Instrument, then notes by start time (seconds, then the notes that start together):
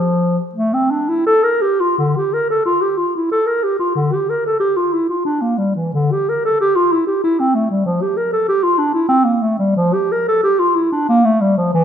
clarinet
Already playing: F3
0.55 A3
0.73 C4
0.91 D4
1.09 E4
1.26 A4
1.43 A#4
1.62 G4
1.80 F4
1.98 D3
2.17 G4
2.33 A#4
2.50 A4
2.65 F4
2.82 G4
2.97 F4
3.15 E4
3.31 A4
3.47 A#4
3.63 G4
3.79 F4
3.95 D3
4.14 G4
4.30 A#4
4.46 A4
4.60 G4
4.76 F4
4.93 E4
5.09 F4
5.25 D4
5.42 A#3
5.58 G3
5.75 E3
5.94 D3
6.12 G4
6.29 A#4
6.45 A4
6.61 G4
6.76 F4
6.92 E4
7.07 G4
7.24 E4
7.40 C4
7.55 A3
7.70 G3
7.86 F3
8.02 G4
8.17 A#4
8.33 A4
8.48 G4
8.63 F4
8.78 D4
8.94 E4
9.09 C4
9.25 A#3
9.41 A3
9.59 G3
9.76 F3
9.94 G4
10.12 A#4
10.28 A4
10.43 G4
10.59 F4
10.75 E4
10.92 D4
11.09 A#3
11.24 A3
11.41 G3
11.57 F3
11.74 E3